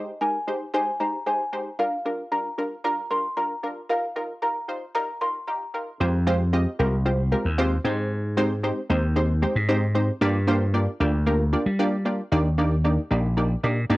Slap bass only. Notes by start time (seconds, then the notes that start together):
6.00 F2
6.79 C2
7.45 D#2
7.84 G#2
8.90 D#2
9.56 G#2
10.21 G2
11.00 D2
11.66 G3
12.32 D#2
13.11 A#1
13.64 A#2
13.90 G2